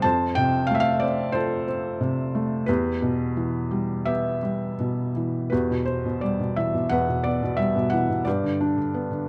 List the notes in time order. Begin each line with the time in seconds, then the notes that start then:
0.02 F2 C5 A5
0.35 C3 G5
0.67 A3 F5
0.75 E5
0.80 F5
1.00 C4 D5
1.32 F4 A4 C5
1.68 C4
2.01 C3
2.35 A3
2.66 E2 G4 B4
3.02 B2
3.37 E3
3.71 G3
4.05 B3 G4 E5
4.43 G3
4.80 B2
5.16 E3
5.50 E2 F#4 G4 B4
5.70 B2
5.85 C5
6.06 B2
6.21 G3 D5
6.40 B2
6.56 E3 E5
6.74 B2
6.89 E2 B4 F#5
7.08 B2
7.24 B3 D5
7.43 B2
7.57 G3 E5
7.76 B2
7.90 E3 F#5
8.10 B2
8.25 G2 G4 B4 D5
8.44 D3
8.61 D4
8.78 D3
8.94 B3
9.11 D3